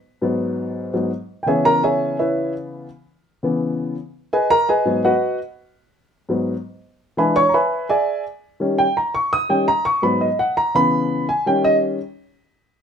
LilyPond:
<<
  \new Staff \with { instrumentName = "Grand piano" } { \time 4/4 \key gis \minor \tempo 4 = 168 r1 | <gis' cis'' e'' g'' gis''>8 <ais' ais''>8 <gis' cis'' e'' gis''>4 <e' b' cis'' e''>4 r4 | r1 | <gis' b' dis'' gis''>8 <ais' ais''>8 <gis' b' dis'' gis''>4 <fis' b' dis'' fis''>4 r4 |
r1 | <b' e'' gis'' b''>8 <cis'' cis'''>8 <b' e'' gis'' ais'' b''>4 <gis' d'' e'' gis''>4 r4 | r8 g''8 ais''8 cis'''8 dis'''8 g''8 ais''8 cis'''8 | b''8 dis''8 fis''8 ais''8 b''4. gis''8 |
g''8 dis''8 r2. | }
  \new Staff \with { instrumentName = "Grand piano" } { \clef bass \time 4/4 \key gis \minor r8 <gis, fis b>2 <gis, fis b>8 r4 | <cis e b>1 | r4. <cis e b>4. r4 | r4. <gis, fis b>8 r2 |
r4. <gis, fis b>8 r2 | <e gis d'>8 r2. r8 | <dis g cis'>8 r2 <dis g cis'>8 r4 | <gis, fis b>8 r4. <cis e b>4. r8 |
<dis g cis'>4. r2 r8 | }
>>